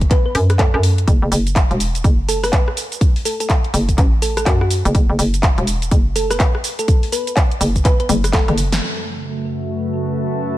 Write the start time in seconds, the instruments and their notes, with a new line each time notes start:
0.01 kick, closed hi-hat
0.11 synth pluck B4, kick, clap, closed hi-hat
0.26 synth pluck B4
0.35 fm bass F#2, open hi-hat
0.50 cross-stick, closed hi-hat
0.59 synth pluck A4, kick, clap, closed hi-hat
0.74 fm bass F#2, synth pluck A4, cross-stick
0.83 open hi-hat
0.98 closed hi-hat
1.08 fm bass F#1, kick, closed hi-hat, shaker
1.22 fm bass F#1
1.32 fm bass F#1, open hi-hat, shaker
1.47 closed hi-hat, shaker
1.56 kick, clap, closed hi-hat, shaker
1.71 fm bass E1, closed hi-hat
1.80 open hi-hat, shaker
1.95 closed hi-hat, shaker
2.04 fm bass F#1, kick, closed hi-hat, shaker
2.29 synth pluck A4, open hi-hat, shaker
2.43 synth pluck B4, cross-stick, open hi-hat, shaker
2.53 kick, clap, closed hi-hat, shaker
2.68 cross-stick
2.77 open hi-hat, shaker
2.92 closed hi-hat, shaker
3.01 kick, closed hi-hat, shaker
3.16 open hi-hat
3.25 synth pluck A4, open hi-hat, shaker
3.40 synth pluck A4, closed hi-hat, shaker
3.50 kick, clap, closed hi-hat, shaker
3.64 closed hi-hat
3.74 fm bass F#1, open hi-hat, shaker
3.89 kick, closed hi-hat, shaker
3.98 fm bass A1, kick, clap, closed hi-hat, shaker
4.22 synth pluck A4, open hi-hat, shaker
4.37 synth pluck A4, cross-stick, closed hi-hat, shaker
4.46 fm bass F#2, synth pluck F#4, kick, clap, closed hi-hat, shaker
4.61 synth pluck F#4, cross-stick
4.71 open hi-hat, shaker
4.85 fm bass F#1, closed hi-hat, shaker
4.95 fm bass F#1, kick, closed hi-hat, shaker
5.10 fm bass F#1
5.19 fm bass F#1, open hi-hat, shaker
5.34 closed hi-hat, shaker
5.43 kick, clap, closed hi-hat, shaker
5.58 fm bass E1, closed hi-hat
5.67 open hi-hat, shaker
5.82 closed hi-hat, shaker
5.91 fm bass F#1, kick, closed hi-hat, shaker
6.16 synth pluck A4, open hi-hat, shaker
6.30 synth pluck B4, cross-stick, open hi-hat, shaker
6.40 kick, clap, closed hi-hat, shaker
6.55 cross-stick
6.64 open hi-hat, shaker
6.79 synth pluck A4, closed hi-hat, shaker
6.88 kick, closed hi-hat, shaker
7.03 open hi-hat
7.12 synth pluck B4, open hi-hat, shaker
7.27 closed hi-hat, shaker
7.37 kick, clap, closed hi-hat, shaker
7.51 closed hi-hat
7.61 fm bass F#1, open hi-hat, shaker
7.76 kick, closed hi-hat, shaker
7.85 synth pluck B4, kick, clap, closed hi-hat, shaker
8.00 synth pluck B4, closed hi-hat
8.09 fm bass F#1, open hi-hat, high tom, shaker
8.24 cross-stick, closed hi-hat, shaker
8.33 synth pluck A4, kick, snare, clap, closed hi-hat, shaker
8.48 fm bass F#1, synth pluck A4, cross-stick, closed hi-hat, mid tom
8.58 open hi-hat, shaker
8.72 snare, closed hi-hat, shaker
8.82 analog synth pad F#2 C#3 A3, ambient pad F#4
8.94 ambient pad B4 E5
9.33 ambient pad A5